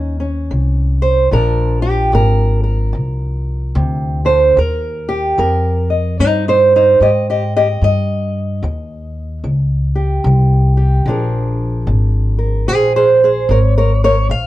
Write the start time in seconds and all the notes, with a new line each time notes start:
Already playing: D#2 D#3 C#4 D#4
0.20 C#4
0.51 C2 D#3
1.02 C5
1.31 A#1 A#2 F3 D4 F4 A#4
1.82 G4
2.13 G#1 A#2 A#4
2.64 A#4
2.93 C2 A#2
3.75 D2 C3
4.25 D3 C5
4.57 D#2 D#3 A#4
5.09 G4
5.38 F2 D#3 A#4
5.90 D#5
6.19 G2 D#3 D#4 C5
6.48 D#4 C5
6.76 D#4 C5
7.00 G#2 D#3 G4 D#5
7.30 G4 D#5
7.56 G4 D#5
7.81 G2 D#3 D#5
8.63 D#2 D#3
9.44 C#2 D#3
9.95 G4
10.24 C2 D#3
10.77 G4
11.06 A#1 A#2 F3 D4 G#4
11.10 A#4
11.87 G#1 A#2
12.39 A#4
12.68 A#1 A#2 G#4 C5
12.96 G#4 C5
13.24 G#4 C5
13.49 G#1 A#2 A#4 C#5
13.78 A#4 C#5
14.04 A#4 C#5
14.29 A#1 A#2 F5